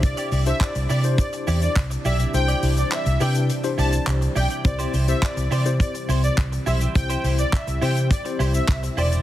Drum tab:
HH |xxoxxxoxxxoxxxox|xxoxxxoxxxoxxxox|xxoxxxoxxxoxxxox|xxoxxxoxxxoxxxox|
SH |xxxxxxxxxxxxxxxx|xxxxxxxxxxxxxxxx|xxxxxxxxxxxxxxxx|xxxxxxxxxxxxxxxx|
CP |----x-------x---|----x-------x---|----x-------x---|----x-------x---|
BD |o---o---o---o---|----------------|o---o---o---o---|o---o---o---o---|